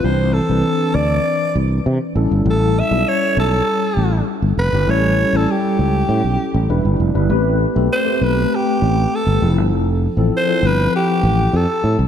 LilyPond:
<<
  \new Staff \with { instrumentName = "Alto saxophone" } { \time 4/4 \key a \minor \tempo 4 = 99 c''8 a'4 d''4 r4. | a'8 e''8 cis''8 a'4. r8 b'8 | cis''8. a'16 g'2 r4 | r4 c''8 b'8 g'4 a'8. r16 |
r4 c''8 b'8 g'4 a'8. r16 | }
  \new Staff \with { instrumentName = "Tine electric piano" } { \time 4/4 \key a \minor <e c' d' c''>8 r16 <e c' d' b'>4. r4 r16 <g cis' e' a'>8~ | <g cis' e' a'>8 r16 <g cis' e' a'>4. r4. <g cis' e' g'>16 | <g cis' e' a'>8 r16 <g cis' e' a'>4. r8. <g d' e' b'>8 r16 <g d' e' b'>16 | <a c' g' b'>8 r16 <a c' g' a'>8 <a c' g' b'>4. r8. <f c' e' gis' a'>8~ |
<f c' e' gis' a'>8 r16 <f c' e' a'>8 <f c' e' a'>4. r4 r16 | }
  \new Staff \with { instrumentName = "Fretless electric bass" } { \clef bass \time 4/4 \key a \minor c,8. c,16 r8 d,8 r8 c,8 c16 r16 a,,16 g,,16 | a,,8. b,,16 r8 b,,8 r8 a,,8 r16 g,,16 f,,16 g,,16 | a,,8. a,,16 r8 cis,8 a,16 b,,16 r16 a,,16 e,,16 g,,16 f,,16 g,,16 | a,,8. b,,16 r8 b,,8 r8 a,,8 r16 g,,16 f,,16 g,,16 |
f,,8. a,,16 r8 g,,8 r8 a,,8 f,16 r16 a,16 c,16 | }
>>